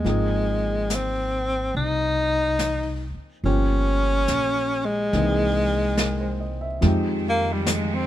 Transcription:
0.00 0.96 G#3 medium
0.04 1.70 G#1 medium
0.04 3.42 F3 soft
0.04 3.44 A#3 soft
0.04 3.45 C4 soft
0.04 brush sweep soft
0.04 snare soft
0.08 3.45 D#4 soft
0.08 3.46 G#4 soft
0.90 snare soft
0.90 hi-hat pedal soft
0.95 1.76 C4 medium
1.75 3.11 C2 medium
1.75 3.12 D#4 medium
1.75 brush sweep soft
2.59 snare soft
2.59 hi-hat pedal soft
3.14 muted upright bass stroke soft
3.43 4.25 G1 medium
3.43 5.13 F3 soft
3.43 5.13 A#3 soft
3.43 4.87 C#4 medium
3.43 5.14 C#4 soft
3.43 5.14 F4 soft
3.43 5.14 G4 soft
3.43 brush sweep soft
4.28 5.09 A#1 medium
4.28 snare soft
4.28 hi-hat pedal soft
4.85 6.54 G#3 medium
5.13 6.78 C2 medium
5.13 6.83 E3 soft
5.13 6.83 A#3 soft
5.13 6.81 C4 soft
5.13 6.83 D#4 soft
5.13 6.84 G#4 soft
5.13 brush sweep soft
5.13 snare soft
5.97 6.37 A#4 soft
5.97 snare soft
5.97 hi-hat pedal soft
6.21 6.56 C5 soft
6.40 6.67 D#5 soft
6.61 6.91 E5 soft
6.81 8.07 F2 medium
6.81 8.07 D#3 medium
6.81 8.07 F3 soft
6.81 8.07 G#3 medium
6.81 8.07 G#3 soft
6.81 8.07 C4 soft
6.81 8.07 D#4 soft
6.81 brush sweep soft
6.81 snare soft
6.85 8.07 G4 soft
7.30 7.54 A#3 medium
7.53 7.75 G3 medium
7.66 snare soft
7.66 hi-hat pedal medium
7.73 7.96 G#3 medium
7.94 8.07 C4 medium

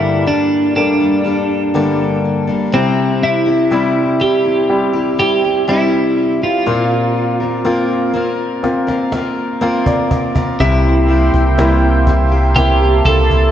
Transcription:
0.00 0.27 G2 medium
0.00 2.69 G2 medium
0.00 0.27 D3 medium
0.00 0.25 G3 medium
0.00 0.73 G3 soft
0.00 0.73 A3 soft
0.00 0.26 A#3 medium
0.00 0.74 A#3 soft
0.00 0.27 D4 medium
0.00 0.27 E4 medium
0.00 0.28 A4 medium
0.26 1.01 G3 medium
0.26 1.01 A#3 medium
0.26 1.00 D4 medium
0.26 0.99 A4 medium
0.76 1.72 G3 soft
0.76 1.72 A3 soft
0.76 1.72 A#3 soft
0.76 2.20 D4 medium
1.00 1.23 G3 soft
1.00 1.25 A#3 soft
1.00 1.26 D4 soft
1.00 1.25 A4 soft
1.25 1.74 G3 soft
1.25 1.74 A#3 soft
1.25 1.75 D4 soft
1.25 1.75 A4 medium
1.74 2.48 G2 medium
1.74 2.48 D3 medium
1.74 2.70 G3 soft
1.74 2.49 G3 medium
1.74 2.70 A3 soft
1.74 2.70 A#3 soft
1.74 2.48 A#3 medium
1.74 2.47 D4 medium
1.74 2.46 A4 medium
2.47 2.72 G3 soft
2.47 2.73 A#3 soft
2.47 2.73 D4 soft
2.47 2.73 A4 soft
2.72 3.47 C3 medium
2.72 6.63 C3 medium
2.72 3.47 G3 medium
2.72 3.47 C4 medium
2.72 3.46 E4 medium
2.72 3.45 G4 medium
3.23 4.24 E4 medium
3.46 3.71 C4 soft
3.46 3.71 E4 soft
3.46 3.71 G4 soft
3.71 4.20 C3 medium
3.71 4.67 G3 soft
3.71 4.18 G3 medium
3.71 4.67 C4 soft
3.71 4.20 C4 medium
3.71 4.67 E4 soft
3.71 4.21 E4 medium
3.71 4.21 G4 medium
4.20 4.45 G3 medium
4.20 4.45 C4 soft
4.20 4.45 E4 medium
4.20 4.43 G4 medium
4.44 4.95 C4 soft
4.44 4.94 E4 soft
4.44 4.92 G4 soft
4.69 5.65 G3 soft
4.69 5.65 C4 soft
4.69 5.66 E4 soft
4.93 5.18 C4 soft
4.93 5.19 E4 soft
4.93 5.18 G4 soft
5.18 5.43 G3 soft
5.18 5.44 C4 soft
5.18 5.43 E4 medium
5.18 5.42 G4 medium
5.43 5.68 C4 soft
5.43 5.68 E4 soft
5.43 5.68 G4 soft
5.68 6.42 C3 medium
5.68 6.63 G3 soft
5.68 6.42 G3 medium
5.68 6.64 C4 soft
5.68 6.42 C4 medium
5.68 6.64 E4 soft
5.68 6.42 E4 medium
5.68 6.40 G4 medium
6.41 6.66 C4 soft
6.41 6.67 E4 soft
6.41 9.58 F4 medium
6.41 6.66 G4 soft
6.66 10.56 A#2 medium
6.66 7.40 A#3 medium
6.66 7.41 C4 medium
6.66 7.40 F4 medium
6.66 7.39 A#4 medium
7.40 7.64 C4 soft
7.40 7.65 F4 soft
7.40 7.65 A#4 soft
7.64 8.12 A#3 medium
7.64 8.60 A#3 soft
7.64 8.61 C4 soft
7.64 8.14 C4 medium
7.64 8.61 F4 soft
7.64 8.14 F4 medium
7.64 8.15 A#4 medium
8.13 8.88 A#3 medium
8.13 8.88 C4 medium
8.13 8.88 F4 medium
8.13 8.86 A#4 medium
8.63 9.59 A#3 soft
8.63 9.59 C4 soft
8.63 9.59 F4 soft
8.63 cajon slap soft
8.87 9.11 C4 soft
8.87 9.12 F4 soft
8.87 9.12 A#4 soft
8.87 cajon slap soft
9.12 9.60 A#3 soft
9.12 9.61 C4 medium
9.12 9.61 F4 medium
9.12 9.62 A#4 medium
9.12 cajon slap medium
9.61 10.35 A#3 medium
9.61 10.57 A#3 soft
9.61 10.57 C4 soft
9.61 10.36 C4 medium
9.61 10.57 F4 soft
9.61 10.35 F4 medium
9.61 10.33 A#4 medium
9.61 9.85 F5 soft
9.86 10.56 D5 medium
9.86 cajon bass medium
10.11 cajon bass medium
10.35 10.60 C4 soft
10.35 10.61 F4 soft
10.35 10.60 A#4 soft
10.35 cajon bass medium
10.60 11.30 C2 medium
10.60 11.09 C3 medium
10.60 13.51 C3 medium
10.60 11.07 G3 medium
10.60 11.08 A#3 medium
10.60 13.51 A#3 medium
10.60 11.09 E4 medium
10.60 11.10 G4 medium
10.60 13.51 E5 medium
10.60 12.56 G5 medium
10.60 13.51 C6 medium
10.60 cajon bass medium
11.09 11.57 G3 soft
11.09 11.58 A#3 soft
11.09 11.58 E4 soft
11.09 11.59 G4 soft
11.34 13.02 C2 medium
11.34 cajon bass soft
11.58 12.07 C3 medium
11.58 12.06 G3 medium
11.58 12.54 A#3 soft
11.58 12.07 A#3 medium
11.58 12.54 C4 soft
11.58 12.54 E4 soft
11.58 12.08 E4 medium
11.58 12.08 G4 medium
11.58 cajon slap medium
12.07 12.32 G3 medium
12.07 12.32 A#3 medium
12.07 12.32 E4 medium
12.07 12.30 G4 medium
12.07 cajon bass medium
12.32 12.83 A#3 soft
12.32 12.81 E4 soft
12.32 12.80 G4 soft
12.56 13.51 A#3 soft
12.56 13.51 C4 soft
12.56 13.51 E4 soft
12.56 13.05 G4 medium
12.56 13.51 A5 medium
12.56 cajon bass medium
12.81 13.05 A#3 soft
12.81 13.07 E4 soft
12.81 13.06 G4 soft
13.05 13.51 C2 medium
13.05 13.51 G3 soft
13.05 13.51 A#3 soft
13.05 13.51 E4 medium
13.05 13.51 G4 medium
13.05 13.51 A4 medium
13.05 cajon bass medium
13.31 cajon bass soft

